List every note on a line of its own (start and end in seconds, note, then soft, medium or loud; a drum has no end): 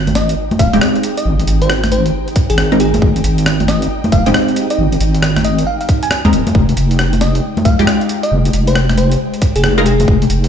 0.00 0.34 G#1 loud
0.00 6.56 D#4 medium
0.00 6.54 G5 medium
0.07 closed hi-hat medium
0.07 high conga medium
0.15 0.30 D#5 medium
0.15 snare medium
0.15 closed hi-hat medium
0.29 closed hi-hat medium
0.51 closed hi-hat soft
0.51 high conga medium
0.59 0.70 D#1 loud
0.59 0.75 F5 medium
0.59 kick loud
0.59 closed hi-hat loud
0.73 0.80 D#1 medium
0.73 2.69 G#3 loud
0.73 2.69 C4 medium
0.73 2.69 D#4 loud
0.73 2.69 G4 loud
0.73 closed hi-hat medium
0.81 cross-stick loud
0.95 closed hi-hat soft
1.03 closed hi-hat loud
1.17 1.28 D#5 medium
1.17 closed hi-hat medium
1.25 1.44 G#1 loud
1.40 closed hi-hat medium
1.47 2.11 G#1 loud
1.47 closed hi-hat loud
1.62 1.72 C5 medium
1.62 closed hi-hat medium
1.70 cross-stick loud
1.84 cross-stick medium
1.84 closed hi-hat soft
1.84 high conga medium
1.92 2.07 C5 medium
1.92 closed hi-hat medium
2.06 closed hi-hat medium
2.28 closed hi-hat soft
2.36 kick loud
2.36 closed hi-hat loud
2.50 2.99 G#1 loud
2.50 2.55 G#4 medium
2.50 closed hi-hat medium
2.58 cross-stick loud
2.72 2.77 G#3 medium
2.72 2.77 C4 medium
2.72 2.77 D#4 medium
2.72 2.77 A#4 loud
2.72 closed hi-hat soft
2.80 3.24 G#4 medium
2.80 closed hi-hat medium
2.94 closed hi-hat medium
2.94 high conga medium
3.02 3.20 G#1 loud
3.02 kick loud
3.16 closed hi-hat medium
3.24 3.87 G#1 loud
3.24 closed hi-hat loud
3.38 closed hi-hat medium
3.46 cross-stick loud
3.60 closed hi-hat medium
3.60 high conga medium
3.68 3.83 D#5 medium
3.68 snare medium
3.68 closed hi-hat medium
3.82 closed hi-hat medium
4.04 closed hi-hat soft
4.04 high conga medium
4.12 4.23 D#1 loud
4.12 4.28 F5 medium
4.12 kick loud
4.12 closed hi-hat loud
4.26 4.33 D#1 medium
4.26 6.22 G#3 loud
4.26 6.22 C4 medium
4.26 6.22 D#4 loud
4.26 6.22 G4 loud
4.26 closed hi-hat medium
4.34 cross-stick loud
4.48 closed hi-hat soft
4.56 closed hi-hat medium
4.70 4.81 D#5 medium
4.70 closed hi-hat medium
4.78 4.97 G#1 loud
4.92 closed hi-hat soft
5.00 5.64 G#1 loud
5.00 closed hi-hat loud
5.14 closed hi-hat medium
5.23 cross-stick loud
5.36 cross-stick medium
5.36 closed hi-hat medium
5.36 high conga medium
5.45 5.60 D#5 medium
5.45 closed hi-hat medium
5.59 closed hi-hat medium
5.67 5.76 F5 medium
5.81 5.86 F5 medium
5.81 closed hi-hat soft
5.89 kick loud
5.89 closed hi-hat loud
6.03 6.08 G#5 medium
6.03 closed hi-hat medium
6.11 cross-stick loud
6.25 6.34 D#2 medium
6.25 6.30 G#3 loud
6.25 6.30 C4 medium
6.25 6.30 D#4 medium
6.25 6.30 A#4 loud
6.25 closed hi-hat soft
6.33 6.44 D#1 medium
6.33 closed hi-hat medium
6.47 closed hi-hat medium
6.47 high conga medium
6.55 6.73 F1 loud
6.55 10.48 G#3 medium
6.55 10.48 G5 medium
6.55 kick loud
6.69 closed hi-hat medium
6.77 7.40 F1 loud
6.77 closed hi-hat loud
6.91 closed hi-hat medium
6.99 cross-stick loud
7.13 closed hi-hat medium
7.13 high conga medium
7.21 7.36 D#5 medium
7.21 snare medium
7.21 closed hi-hat medium
7.35 closed hi-hat medium
7.57 closed hi-hat soft
7.57 high conga medium
7.65 7.76 C2 loud
7.65 7.80 F5 loud
7.65 kick loud
7.65 closed hi-hat loud
7.79 7.85 C2 medium
7.79 9.74 G#3 loud
7.79 9.74 D#4 loud
7.79 9.74 F4 medium
7.79 9.74 G4 loud
7.79 closed hi-hat medium
7.87 cross-stick loud
8.01 closed hi-hat soft
8.09 closed hi-hat medium
8.23 8.34 D#5 medium
8.23 closed hi-hat medium
8.32 8.50 F1 loud
8.45 closed hi-hat medium
8.53 9.17 F1 loud
8.53 closed hi-hat loud
8.67 8.78 C5 medium
8.67 closed hi-hat medium
8.75 cross-stick loud
8.89 cross-stick medium
8.89 closed hi-hat medium
8.89 high conga medium
8.98 9.13 C5 medium
8.98 closed hi-hat medium
9.12 closed hi-hat medium
9.34 closed hi-hat soft
9.42 kick loud
9.42 closed hi-hat loud
9.56 10.05 F1 loud
9.56 9.61 G#4 medium
9.56 closed hi-hat medium
9.64 9.73 G#4 medium
9.64 cross-stick loud
9.78 9.83 G#3 loud
9.78 9.83 D#4 medium
9.78 9.83 F4 medium
9.78 9.83 A#4 loud
9.78 closed hi-hat soft
9.86 10.30 G#4 medium
9.86 closed hi-hat medium
10.00 closed hi-hat medium
10.00 high conga medium
10.08 10.26 F1 loud
10.08 kick loud
10.22 closed hi-hat medium
10.30 10.48 F1 loud
10.30 closed hi-hat loud
10.44 closed hi-hat medium